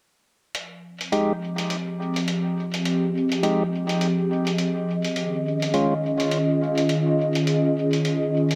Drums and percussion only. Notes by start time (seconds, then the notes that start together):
0.55 closed hi-hat
1.01 closed hi-hat
1.12 closed hi-hat
1.58 closed hi-hat
1.70 closed hi-hat
2.16 closed hi-hat
2.28 closed hi-hat
2.74 closed hi-hat
2.85 closed hi-hat
3.32 closed hi-hat
3.43 closed hi-hat
3.89 closed hi-hat
4.01 closed hi-hat
4.47 closed hi-hat
4.58 closed hi-hat
5.05 closed hi-hat
5.16 closed hi-hat
5.62 closed hi-hat
5.74 closed hi-hat
6.20 closed hi-hat
6.31 closed hi-hat
6.78 closed hi-hat
6.89 closed hi-hat
7.35 closed hi-hat
7.47 closed hi-hat
7.93 closed hi-hat
8.05 closed hi-hat
8.51 closed hi-hat